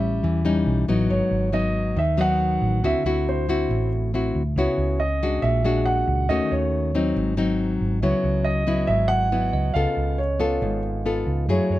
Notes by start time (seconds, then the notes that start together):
Already playing: A1 A2 G3 C#4 E5
0.23 E2 E3
0.45 G3 C#4 D#4
0.66 B1
0.88 A1 F#3 B3 D#4
1.09 G#1 G#2 C#5
1.31 G#1
1.53 F#3 B3 D#4 D#5
1.96 D#2 D#3 E5
2.18 F#3 B3 D#4 F#5
2.61 A1
2.83 D2 D3 C4 E4 F#4 E5
3.04 D2 C4 E4 F#4
3.29 C5
3.49 C4 E4 F#4
3.69 A1 A2
4.14 C4 E4 F#4
4.35 D2
4.56 C#2 C#3 B3 E4 F#4 C#5
4.78 C#2
5.00 D#5
5.23 G#3 D4 F#4
5.42 A#1 A#2 E5
5.65 G#3 D4 F#4
5.86 F#5
6.07 C#2
6.29 D#2 D#3 A3 C#4 F#4 D#5
6.51 D#2 C#5
6.95 F#3 C4 D#4
7.16 G#1 G#2
7.37 F#3 C4 D#4
7.81 G#1
8.02 C#2 C#3 F#3 B3 E4 C#5
8.24 C#2
8.45 D#5
8.67 F#3 B3 E4
8.87 G#1 G#2 E5
9.08 F#5
9.32 F#3 B3 E4
9.53 C#2 D#5
9.74 C#2 C#3 B3 F4 A4 F5
9.97 C#2
10.18 C#5
10.40 B3 F4 A4 F5
10.62 G#1 G#2
11.06 B3 F4 A4
11.27 C#2
11.48 F#2 F#3 A3 E4 G#4 C#5
11.70 F#2 C#5